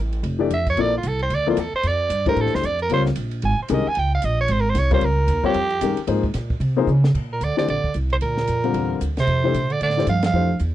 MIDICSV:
0, 0, Header, 1, 7, 480
1, 0, Start_track
1, 0, Tempo, 265604
1, 1404, Time_signature, 4, 2, 24, 8
1, 19420, End_track
2, 0, Start_track
2, 0, Title_t, "Soprano saxophone"
2, 0, Program_c, 0, 64
2, 967, Note_on_c, 0, 76, 89
2, 1214, Note_off_c, 0, 76, 0
2, 1263, Note_on_c, 0, 73, 97
2, 1472, Note_on_c, 0, 74, 106
2, 1499, Note_off_c, 0, 73, 0
2, 1726, Note_off_c, 0, 74, 0
2, 1760, Note_on_c, 0, 65, 63
2, 1944, Note_on_c, 0, 69, 85
2, 1971, Note_off_c, 0, 65, 0
2, 2201, Note_off_c, 0, 69, 0
2, 2213, Note_on_c, 0, 72, 94
2, 2437, Note_on_c, 0, 74, 107
2, 2464, Note_off_c, 0, 72, 0
2, 2688, Note_off_c, 0, 74, 0
2, 2709, Note_on_c, 0, 65, 61
2, 2894, Note_on_c, 0, 69, 75
2, 2921, Note_off_c, 0, 65, 0
2, 3156, Note_off_c, 0, 69, 0
2, 3172, Note_on_c, 0, 72, 100
2, 3391, Note_on_c, 0, 74, 98
2, 3418, Note_off_c, 0, 72, 0
2, 4119, Note_off_c, 0, 74, 0
2, 4130, Note_on_c, 0, 70, 94
2, 4348, Note_on_c, 0, 69, 84
2, 4376, Note_off_c, 0, 70, 0
2, 4609, Note_on_c, 0, 72, 88
2, 4636, Note_off_c, 0, 69, 0
2, 4806, Note_on_c, 0, 74, 88
2, 4833, Note_off_c, 0, 72, 0
2, 5071, Note_off_c, 0, 74, 0
2, 5101, Note_on_c, 0, 70, 86
2, 5256, Note_off_c, 0, 70, 0
2, 5306, Note_on_c, 0, 72, 93
2, 5459, Note_off_c, 0, 72, 0
2, 6238, Note_on_c, 0, 80, 94
2, 6487, Note_off_c, 0, 80, 0
2, 6548, Note_on_c, 0, 72, 58
2, 6748, Note_on_c, 0, 75, 81
2, 6775, Note_off_c, 0, 72, 0
2, 7022, Note_on_c, 0, 80, 116
2, 7049, Note_off_c, 0, 75, 0
2, 7210, Note_on_c, 0, 79, 98
2, 7237, Note_off_c, 0, 80, 0
2, 7471, Note_off_c, 0, 79, 0
2, 7492, Note_on_c, 0, 77, 93
2, 7679, Note_on_c, 0, 75, 86
2, 7706, Note_off_c, 0, 77, 0
2, 7945, Note_off_c, 0, 75, 0
2, 7965, Note_on_c, 0, 73, 93
2, 8166, Note_on_c, 0, 72, 85
2, 8193, Note_off_c, 0, 73, 0
2, 8322, Note_on_c, 0, 70, 80
2, 8349, Note_off_c, 0, 72, 0
2, 8486, Note_on_c, 0, 72, 88
2, 8513, Note_off_c, 0, 70, 0
2, 8652, Note_on_c, 0, 73, 99
2, 8679, Note_off_c, 0, 72, 0
2, 8911, Note_off_c, 0, 73, 0
2, 8926, Note_on_c, 0, 72, 89
2, 9125, Note_on_c, 0, 70, 84
2, 9152, Note_off_c, 0, 72, 0
2, 9851, Note_off_c, 0, 70, 0
2, 9862, Note_on_c, 0, 67, 96
2, 10930, Note_off_c, 0, 67, 0
2, 13246, Note_on_c, 0, 70, 71
2, 13445, Note_on_c, 0, 74, 77
2, 13472, Note_off_c, 0, 70, 0
2, 13700, Note_off_c, 0, 74, 0
2, 13711, Note_on_c, 0, 74, 80
2, 13877, Note_off_c, 0, 74, 0
2, 13913, Note_on_c, 0, 74, 79
2, 14342, Note_off_c, 0, 74, 0
2, 14680, Note_on_c, 0, 72, 74
2, 14758, Note_off_c, 0, 72, 0
2, 14858, Note_on_c, 0, 70, 87
2, 16218, Note_off_c, 0, 70, 0
2, 16623, Note_on_c, 0, 72, 93
2, 17575, Note_on_c, 0, 74, 88
2, 17602, Note_off_c, 0, 72, 0
2, 17745, Note_off_c, 0, 74, 0
2, 17767, Note_on_c, 0, 74, 90
2, 18193, Note_off_c, 0, 74, 0
2, 18243, Note_on_c, 0, 77, 96
2, 18492, Note_off_c, 0, 77, 0
2, 18543, Note_on_c, 0, 77, 97
2, 19145, Note_off_c, 0, 77, 0
2, 19420, End_track
3, 0, Start_track
3, 0, Title_t, "Grand piano"
3, 0, Program_c, 1, 0
3, 698, Note_on_c, 1, 52, 74
3, 711, Note_on_c, 1, 57, 69
3, 718, Note_on_c, 1, 62, 65
3, 722, Note_on_c, 1, 67, 68
3, 736, Note_on_c, 1, 74, 82
3, 889, Note_off_c, 1, 52, 0
3, 895, Note_off_c, 1, 57, 0
3, 898, Note_off_c, 1, 62, 0
3, 900, Note_off_c, 1, 67, 0
3, 907, Note_off_c, 1, 74, 0
3, 1395, Note_on_c, 1, 53, 67
3, 1412, Note_on_c, 1, 58, 59
3, 1416, Note_on_c, 1, 64, 63
3, 1420, Note_on_c, 1, 69, 56
3, 1429, Note_on_c, 1, 74, 71
3, 1658, Note_off_c, 1, 53, 0
3, 1667, Note_off_c, 1, 58, 0
3, 1669, Note_off_c, 1, 64, 0
3, 1671, Note_off_c, 1, 69, 0
3, 1676, Note_off_c, 1, 74, 0
3, 2651, Note_on_c, 1, 53, 83
3, 2664, Note_on_c, 1, 58, 76
3, 2665, Note_on_c, 1, 64, 71
3, 2671, Note_on_c, 1, 69, 73
3, 2677, Note_on_c, 1, 74, 88
3, 2824, Note_off_c, 1, 53, 0
3, 2831, Note_off_c, 1, 58, 0
3, 2832, Note_off_c, 1, 64, 0
3, 2834, Note_off_c, 1, 69, 0
3, 2837, Note_off_c, 1, 74, 0
3, 4089, Note_on_c, 1, 52, 68
3, 4094, Note_on_c, 1, 57, 58
3, 4103, Note_on_c, 1, 62, 59
3, 4106, Note_on_c, 1, 67, 57
3, 4119, Note_on_c, 1, 72, 74
3, 4723, Note_off_c, 1, 52, 0
3, 4725, Note_off_c, 1, 57, 0
3, 4730, Note_off_c, 1, 62, 0
3, 4731, Note_off_c, 1, 67, 0
3, 4738, Note_off_c, 1, 72, 0
3, 5257, Note_on_c, 1, 55, 65
3, 5265, Note_on_c, 1, 60, 65
3, 5279, Note_on_c, 1, 65, 65
3, 5282, Note_on_c, 1, 70, 65
3, 5286, Note_on_c, 1, 73, 76
3, 5507, Note_off_c, 1, 55, 0
3, 5512, Note_off_c, 1, 60, 0
3, 5519, Note_off_c, 1, 65, 0
3, 5520, Note_off_c, 1, 70, 0
3, 5522, Note_off_c, 1, 73, 0
3, 6672, Note_on_c, 1, 51, 66
3, 6681, Note_on_c, 1, 56, 61
3, 6689, Note_on_c, 1, 67, 61
3, 6693, Note_on_c, 1, 61, 59
3, 6711, Note_on_c, 1, 70, 72
3, 6934, Note_off_c, 1, 51, 0
3, 6939, Note_off_c, 1, 56, 0
3, 6942, Note_off_c, 1, 67, 0
3, 6945, Note_off_c, 1, 61, 0
3, 6954, Note_off_c, 1, 70, 0
3, 8872, Note_on_c, 1, 55, 75
3, 8872, Note_on_c, 1, 60, 67
3, 8884, Note_on_c, 1, 65, 66
3, 8893, Note_on_c, 1, 70, 69
3, 8896, Note_on_c, 1, 73, 77
3, 9051, Note_off_c, 1, 55, 0
3, 9051, Note_off_c, 1, 60, 0
3, 9056, Note_off_c, 1, 65, 0
3, 9061, Note_off_c, 1, 70, 0
3, 9062, Note_off_c, 1, 73, 0
3, 9820, Note_on_c, 1, 55, 71
3, 9827, Note_on_c, 1, 65, 65
3, 9833, Note_on_c, 1, 60, 69
3, 9844, Note_on_c, 1, 73, 86
3, 9846, Note_on_c, 1, 70, 68
3, 10004, Note_off_c, 1, 55, 0
3, 10007, Note_off_c, 1, 65, 0
3, 10010, Note_off_c, 1, 60, 0
3, 10016, Note_off_c, 1, 73, 0
3, 10017, Note_off_c, 1, 70, 0
3, 10511, Note_on_c, 1, 51, 56
3, 10518, Note_on_c, 1, 56, 56
3, 10523, Note_on_c, 1, 61, 52
3, 10537, Note_on_c, 1, 67, 52
3, 10547, Note_on_c, 1, 70, 64
3, 10771, Note_off_c, 1, 51, 0
3, 10774, Note_off_c, 1, 56, 0
3, 10776, Note_off_c, 1, 61, 0
3, 10784, Note_off_c, 1, 67, 0
3, 10788, Note_off_c, 1, 70, 0
3, 10970, Note_on_c, 1, 53, 67
3, 10982, Note_on_c, 1, 58, 59
3, 10982, Note_on_c, 1, 63, 55
3, 10988, Note_on_c, 1, 68, 55
3, 10998, Note_on_c, 1, 72, 70
3, 11240, Note_off_c, 1, 53, 0
3, 11246, Note_off_c, 1, 58, 0
3, 11246, Note_off_c, 1, 63, 0
3, 11249, Note_off_c, 1, 68, 0
3, 11254, Note_off_c, 1, 72, 0
3, 12224, Note_on_c, 1, 53, 73
3, 12232, Note_on_c, 1, 58, 74
3, 12250, Note_on_c, 1, 63, 71
3, 12250, Note_on_c, 1, 68, 75
3, 12252, Note_on_c, 1, 72, 87
3, 12405, Note_off_c, 1, 53, 0
3, 12409, Note_off_c, 1, 58, 0
3, 12418, Note_off_c, 1, 63, 0
3, 12418, Note_off_c, 1, 68, 0
3, 12419, Note_off_c, 1, 72, 0
3, 13678, Note_on_c, 1, 52, 62
3, 13679, Note_on_c, 1, 57, 54
3, 13686, Note_on_c, 1, 62, 60
3, 13686, Note_on_c, 1, 67, 58
3, 13701, Note_on_c, 1, 72, 66
3, 13853, Note_off_c, 1, 52, 0
3, 13854, Note_off_c, 1, 57, 0
3, 13857, Note_off_c, 1, 62, 0
3, 13857, Note_off_c, 1, 67, 0
3, 13865, Note_off_c, 1, 72, 0
3, 15609, Note_on_c, 1, 50, 61
3, 15609, Note_on_c, 1, 55, 55
3, 15621, Note_on_c, 1, 60, 56
3, 15627, Note_on_c, 1, 65, 58
3, 15633, Note_on_c, 1, 70, 72
3, 16243, Note_off_c, 1, 50, 0
3, 16243, Note_off_c, 1, 55, 0
3, 16249, Note_off_c, 1, 60, 0
3, 16252, Note_off_c, 1, 65, 0
3, 16255, Note_off_c, 1, 70, 0
3, 17053, Note_on_c, 1, 52, 62
3, 17062, Note_on_c, 1, 62, 63
3, 17064, Note_on_c, 1, 57, 65
3, 17080, Note_on_c, 1, 67, 61
3, 17083, Note_on_c, 1, 72, 73
3, 17224, Note_off_c, 1, 52, 0
3, 17229, Note_off_c, 1, 62, 0
3, 17230, Note_off_c, 1, 57, 0
3, 17238, Note_off_c, 1, 67, 0
3, 17240, Note_off_c, 1, 72, 0
3, 18023, Note_on_c, 1, 52, 61
3, 18033, Note_on_c, 1, 57, 56
3, 18039, Note_on_c, 1, 62, 56
3, 18042, Note_on_c, 1, 67, 53
3, 18055, Note_on_c, 1, 72, 67
3, 18190, Note_off_c, 1, 52, 0
3, 18195, Note_off_c, 1, 57, 0
3, 18199, Note_off_c, 1, 62, 0
3, 18200, Note_off_c, 1, 67, 0
3, 18206, Note_off_c, 1, 72, 0
3, 18675, Note_on_c, 1, 52, 50
3, 18686, Note_on_c, 1, 57, 43
3, 18692, Note_on_c, 1, 62, 45
3, 18707, Note_on_c, 1, 67, 45
3, 18711, Note_on_c, 1, 72, 58
3, 18939, Note_off_c, 1, 52, 0
3, 18944, Note_off_c, 1, 57, 0
3, 18947, Note_off_c, 1, 62, 0
3, 18954, Note_off_c, 1, 67, 0
3, 18956, Note_off_c, 1, 72, 0
3, 19420, End_track
4, 0, Start_track
4, 0, Title_t, "Bass clarinet"
4, 0, Program_c, 2, 71
4, 13223, Note_on_c, 2, 46, 54
4, 13409, Note_on_c, 2, 50, 66
4, 13436, Note_off_c, 2, 46, 0
4, 13682, Note_off_c, 2, 50, 0
4, 13693, Note_on_c, 2, 50, 62
4, 13867, Note_off_c, 2, 50, 0
4, 13887, Note_on_c, 2, 50, 66
4, 14328, Note_off_c, 2, 50, 0
4, 14663, Note_on_c, 2, 48, 58
4, 14746, Note_off_c, 2, 48, 0
4, 14853, Note_on_c, 2, 46, 75
4, 16216, Note_off_c, 2, 46, 0
4, 16578, Note_on_c, 2, 48, 81
4, 17536, Note_on_c, 2, 50, 70
4, 17563, Note_off_c, 2, 48, 0
4, 17726, Note_off_c, 2, 50, 0
4, 17738, Note_on_c, 2, 50, 74
4, 18178, Note_off_c, 2, 50, 0
4, 18213, Note_on_c, 2, 53, 75
4, 18476, Note_off_c, 2, 53, 0
4, 18493, Note_on_c, 2, 53, 73
4, 19118, Note_off_c, 2, 53, 0
4, 19420, End_track
5, 0, Start_track
5, 0, Title_t, "Upright bass"
5, 0, Program_c, 3, 32
5, 0, Note_on_c, 3, 33, 78
5, 407, Note_off_c, 3, 33, 0
5, 418, Note_on_c, 3, 29, 87
5, 896, Note_off_c, 3, 29, 0
5, 910, Note_on_c, 3, 41, 89
5, 1371, Note_off_c, 3, 41, 0
5, 1382, Note_on_c, 3, 34, 87
5, 1858, Note_off_c, 3, 34, 0
5, 1873, Note_on_c, 3, 36, 86
5, 2338, Note_off_c, 3, 36, 0
5, 2349, Note_on_c, 3, 38, 88
5, 2822, Note_off_c, 3, 38, 0
5, 2837, Note_on_c, 3, 40, 86
5, 3107, Note_off_c, 3, 40, 0
5, 3313, Note_on_c, 3, 41, 86
5, 3775, Note_off_c, 3, 41, 0
5, 3786, Note_on_c, 3, 43, 88
5, 4260, Note_off_c, 3, 43, 0
5, 4267, Note_on_c, 3, 45, 78
5, 4436, Note_on_c, 3, 41, 49
5, 4463, Note_off_c, 3, 45, 0
5, 4588, Note_off_c, 3, 41, 0
5, 4599, Note_on_c, 3, 38, 67
5, 4749, Note_off_c, 3, 38, 0
5, 4762, Note_on_c, 3, 41, 88
5, 5222, Note_off_c, 3, 41, 0
5, 5232, Note_on_c, 3, 37, 84
5, 5702, Note_off_c, 3, 37, 0
5, 5721, Note_on_c, 3, 34, 83
5, 6186, Note_off_c, 3, 34, 0
5, 6206, Note_on_c, 3, 32, 93
5, 6470, Note_off_c, 3, 32, 0
5, 6680, Note_on_c, 3, 36, 93
5, 6947, Note_off_c, 3, 36, 0
5, 7176, Note_on_c, 3, 37, 82
5, 7632, Note_off_c, 3, 37, 0
5, 7659, Note_on_c, 3, 34, 85
5, 8104, Note_off_c, 3, 34, 0
5, 8115, Note_on_c, 3, 32, 90
5, 8563, Note_off_c, 3, 32, 0
5, 8574, Note_on_c, 3, 36, 88
5, 9050, Note_off_c, 3, 36, 0
5, 9072, Note_on_c, 3, 37, 90
5, 9522, Note_off_c, 3, 37, 0
5, 9533, Note_on_c, 3, 39, 91
5, 10008, Note_off_c, 3, 39, 0
5, 10021, Note_on_c, 3, 41, 86
5, 10492, Note_off_c, 3, 41, 0
5, 10504, Note_on_c, 3, 43, 94
5, 10776, Note_off_c, 3, 43, 0
5, 10989, Note_on_c, 3, 44, 92
5, 11456, Note_off_c, 3, 44, 0
5, 11464, Note_on_c, 3, 46, 90
5, 11918, Note_off_c, 3, 46, 0
5, 11928, Note_on_c, 3, 48, 95
5, 12406, Note_off_c, 3, 48, 0
5, 12417, Note_on_c, 3, 49, 96
5, 12891, Note_off_c, 3, 49, 0
5, 12918, Note_on_c, 3, 46, 74
5, 13377, Note_off_c, 3, 46, 0
5, 13388, Note_on_c, 3, 38, 75
5, 13658, Note_off_c, 3, 38, 0
5, 13880, Note_on_c, 3, 34, 77
5, 14145, Note_off_c, 3, 34, 0
5, 14364, Note_on_c, 3, 36, 82
5, 14827, Note_off_c, 3, 36, 0
5, 14847, Note_on_c, 3, 38, 72
5, 15309, Note_off_c, 3, 38, 0
5, 15332, Note_on_c, 3, 41, 80
5, 15782, Note_off_c, 3, 41, 0
5, 15793, Note_on_c, 3, 40, 87
5, 16262, Note_off_c, 3, 40, 0
5, 16281, Note_on_c, 3, 38, 76
5, 16742, Note_off_c, 3, 38, 0
5, 16753, Note_on_c, 3, 41, 81
5, 17223, Note_off_c, 3, 41, 0
5, 17244, Note_on_c, 3, 46, 83
5, 17709, Note_off_c, 3, 46, 0
5, 17723, Note_on_c, 3, 45, 77
5, 18179, Note_off_c, 3, 45, 0
5, 18190, Note_on_c, 3, 43, 83
5, 18658, Note_off_c, 3, 43, 0
5, 18668, Note_on_c, 3, 41, 78
5, 19142, Note_off_c, 3, 41, 0
5, 19159, Note_on_c, 3, 40, 80
5, 19420, Note_off_c, 3, 40, 0
5, 19420, End_track
6, 0, Start_track
6, 0, Title_t, "Muted upright bass strokes"
6, 3126, Note_on_c, 9, 29, 38
6, 3307, Note_off_c, 9, 29, 0
6, 6502, Note_on_c, 9, 29, 40
6, 6683, Note_off_c, 9, 29, 0
6, 6983, Note_on_c, 9, 29, 42
6, 7163, Note_off_c, 9, 29, 0
6, 10799, Note_on_c, 9, 29, 42
6, 10980, Note_off_c, 9, 29, 0
6, 13689, Note_on_c, 9, 29, 35
6, 13870, Note_off_c, 9, 29, 0
6, 14172, Note_on_c, 9, 29, 40
6, 14353, Note_off_c, 9, 29, 0
6, 19420, End_track
7, 0, Start_track
7, 0, Title_t, "Drums"
7, 226, Note_on_c, 9, 51, 49
7, 406, Note_off_c, 9, 51, 0
7, 423, Note_on_c, 9, 51, 59
7, 604, Note_off_c, 9, 51, 0
7, 911, Note_on_c, 9, 44, 58
7, 911, Note_on_c, 9, 51, 69
7, 1092, Note_off_c, 9, 44, 0
7, 1092, Note_off_c, 9, 51, 0
7, 1202, Note_on_c, 9, 51, 50
7, 1204, Note_on_c, 9, 36, 64
7, 1383, Note_off_c, 9, 51, 0
7, 1385, Note_off_c, 9, 36, 0
7, 1392, Note_on_c, 9, 51, 60
7, 1572, Note_off_c, 9, 51, 0
7, 1864, Note_on_c, 9, 44, 59
7, 1864, Note_on_c, 9, 51, 71
7, 2045, Note_off_c, 9, 44, 0
7, 2045, Note_off_c, 9, 51, 0
7, 2152, Note_on_c, 9, 51, 45
7, 2333, Note_off_c, 9, 51, 0
7, 2354, Note_on_c, 9, 51, 61
7, 2534, Note_off_c, 9, 51, 0
7, 2832, Note_on_c, 9, 44, 54
7, 2832, Note_on_c, 9, 51, 75
7, 3012, Note_off_c, 9, 44, 0
7, 3012, Note_off_c, 9, 51, 0
7, 3311, Note_on_c, 9, 51, 68
7, 3492, Note_off_c, 9, 51, 0
7, 3794, Note_on_c, 9, 44, 50
7, 3794, Note_on_c, 9, 51, 73
7, 3975, Note_off_c, 9, 44, 0
7, 3975, Note_off_c, 9, 51, 0
7, 4084, Note_on_c, 9, 51, 48
7, 4088, Note_on_c, 9, 36, 64
7, 4264, Note_off_c, 9, 51, 0
7, 4268, Note_off_c, 9, 36, 0
7, 4275, Note_on_c, 9, 51, 62
7, 4450, Note_on_c, 9, 38, 32
7, 4456, Note_off_c, 9, 51, 0
7, 4605, Note_off_c, 9, 38, 0
7, 4605, Note_on_c, 9, 38, 49
7, 4756, Note_on_c, 9, 44, 54
7, 4756, Note_on_c, 9, 51, 69
7, 4785, Note_off_c, 9, 38, 0
7, 4937, Note_off_c, 9, 44, 0
7, 4937, Note_off_c, 9, 51, 0
7, 5042, Note_on_c, 9, 51, 47
7, 5223, Note_off_c, 9, 51, 0
7, 5232, Note_on_c, 9, 51, 67
7, 5413, Note_off_c, 9, 51, 0
7, 5526, Note_on_c, 9, 38, 43
7, 5701, Note_on_c, 9, 44, 50
7, 5701, Note_on_c, 9, 51, 77
7, 5706, Note_off_c, 9, 38, 0
7, 5881, Note_off_c, 9, 44, 0
7, 5881, Note_off_c, 9, 51, 0
7, 5985, Note_on_c, 9, 51, 50
7, 6166, Note_off_c, 9, 51, 0
7, 6180, Note_on_c, 9, 51, 61
7, 6361, Note_off_c, 9, 51, 0
7, 6657, Note_on_c, 9, 44, 54
7, 6657, Note_on_c, 9, 51, 74
7, 6838, Note_off_c, 9, 44, 0
7, 6838, Note_off_c, 9, 51, 0
7, 7135, Note_on_c, 9, 51, 70
7, 7316, Note_off_c, 9, 51, 0
7, 7621, Note_on_c, 9, 44, 64
7, 7621, Note_on_c, 9, 51, 75
7, 7802, Note_off_c, 9, 44, 0
7, 7802, Note_off_c, 9, 51, 0
7, 8098, Note_on_c, 9, 51, 62
7, 8279, Note_off_c, 9, 51, 0
7, 8579, Note_on_c, 9, 44, 55
7, 8579, Note_on_c, 9, 51, 77
7, 8588, Note_on_c, 9, 38, 39
7, 8760, Note_off_c, 9, 44, 0
7, 8760, Note_off_c, 9, 51, 0
7, 8769, Note_off_c, 9, 38, 0
7, 8869, Note_on_c, 9, 51, 51
7, 8874, Note_on_c, 9, 36, 62
7, 9050, Note_off_c, 9, 51, 0
7, 9055, Note_off_c, 9, 36, 0
7, 9055, Note_on_c, 9, 51, 68
7, 9236, Note_off_c, 9, 51, 0
7, 9536, Note_on_c, 9, 44, 54
7, 9536, Note_on_c, 9, 51, 73
7, 9716, Note_off_c, 9, 44, 0
7, 9716, Note_off_c, 9, 51, 0
7, 9827, Note_on_c, 9, 36, 49
7, 10008, Note_off_c, 9, 36, 0
7, 10014, Note_on_c, 9, 51, 64
7, 10195, Note_off_c, 9, 51, 0
7, 10304, Note_on_c, 9, 51, 51
7, 10485, Note_off_c, 9, 51, 0
7, 10499, Note_on_c, 9, 44, 65
7, 10499, Note_on_c, 9, 51, 83
7, 10680, Note_off_c, 9, 44, 0
7, 10680, Note_off_c, 9, 51, 0
7, 10787, Note_on_c, 9, 51, 53
7, 10968, Note_off_c, 9, 51, 0
7, 10975, Note_on_c, 9, 51, 73
7, 11155, Note_off_c, 9, 51, 0
7, 11267, Note_on_c, 9, 36, 58
7, 11448, Note_off_c, 9, 36, 0
7, 11452, Note_on_c, 9, 44, 58
7, 11452, Note_on_c, 9, 51, 74
7, 11461, Note_on_c, 9, 38, 37
7, 11633, Note_off_c, 9, 44, 0
7, 11633, Note_off_c, 9, 51, 0
7, 11642, Note_off_c, 9, 38, 0
7, 11750, Note_on_c, 9, 36, 62
7, 11931, Note_off_c, 9, 36, 0
7, 11943, Note_on_c, 9, 51, 66
7, 12124, Note_off_c, 9, 51, 0
7, 12428, Note_on_c, 9, 44, 56
7, 12608, Note_off_c, 9, 44, 0
7, 12724, Note_on_c, 9, 38, 76
7, 12904, Note_off_c, 9, 38, 0
7, 12914, Note_on_c, 9, 36, 66
7, 12920, Note_on_c, 9, 49, 63
7, 13095, Note_off_c, 9, 36, 0
7, 13101, Note_off_c, 9, 49, 0
7, 13389, Note_on_c, 9, 44, 48
7, 13389, Note_on_c, 9, 51, 65
7, 13570, Note_off_c, 9, 44, 0
7, 13570, Note_off_c, 9, 51, 0
7, 13694, Note_on_c, 9, 38, 41
7, 13874, Note_off_c, 9, 38, 0
7, 13884, Note_on_c, 9, 51, 54
7, 14065, Note_off_c, 9, 51, 0
7, 14169, Note_on_c, 9, 36, 54
7, 14349, Note_on_c, 9, 44, 62
7, 14349, Note_on_c, 9, 51, 64
7, 14350, Note_off_c, 9, 36, 0
7, 14530, Note_off_c, 9, 44, 0
7, 14530, Note_off_c, 9, 51, 0
7, 14636, Note_on_c, 9, 51, 45
7, 14817, Note_off_c, 9, 51, 0
7, 14832, Note_on_c, 9, 51, 58
7, 15013, Note_off_c, 9, 51, 0
7, 15131, Note_on_c, 9, 38, 45
7, 15311, Note_off_c, 9, 38, 0
7, 15314, Note_on_c, 9, 44, 58
7, 15314, Note_on_c, 9, 51, 63
7, 15495, Note_off_c, 9, 44, 0
7, 15495, Note_off_c, 9, 51, 0
7, 15608, Note_on_c, 9, 51, 43
7, 15789, Note_off_c, 9, 51, 0
7, 15795, Note_on_c, 9, 51, 56
7, 15976, Note_off_c, 9, 51, 0
7, 16279, Note_on_c, 9, 44, 62
7, 16279, Note_on_c, 9, 51, 65
7, 16460, Note_off_c, 9, 44, 0
7, 16460, Note_off_c, 9, 51, 0
7, 16568, Note_on_c, 9, 51, 43
7, 16577, Note_on_c, 9, 38, 50
7, 16749, Note_off_c, 9, 51, 0
7, 16756, Note_on_c, 9, 51, 55
7, 16758, Note_off_c, 9, 38, 0
7, 16937, Note_off_c, 9, 51, 0
7, 17245, Note_on_c, 9, 44, 54
7, 17245, Note_on_c, 9, 51, 61
7, 17426, Note_off_c, 9, 44, 0
7, 17426, Note_off_c, 9, 51, 0
7, 17529, Note_on_c, 9, 51, 44
7, 17710, Note_off_c, 9, 51, 0
7, 17721, Note_on_c, 9, 51, 57
7, 17891, Note_on_c, 9, 38, 29
7, 17902, Note_off_c, 9, 51, 0
7, 18046, Note_off_c, 9, 38, 0
7, 18046, Note_on_c, 9, 38, 39
7, 18194, Note_on_c, 9, 44, 60
7, 18194, Note_on_c, 9, 51, 69
7, 18227, Note_off_c, 9, 38, 0
7, 18375, Note_off_c, 9, 44, 0
7, 18375, Note_off_c, 9, 51, 0
7, 18478, Note_on_c, 9, 51, 67
7, 18487, Note_on_c, 9, 38, 75
7, 18659, Note_off_c, 9, 51, 0
7, 18668, Note_off_c, 9, 38, 0
7, 19145, Note_on_c, 9, 44, 47
7, 19145, Note_on_c, 9, 51, 58
7, 19326, Note_off_c, 9, 44, 0
7, 19326, Note_off_c, 9, 51, 0
7, 19420, End_track
0, 0, End_of_file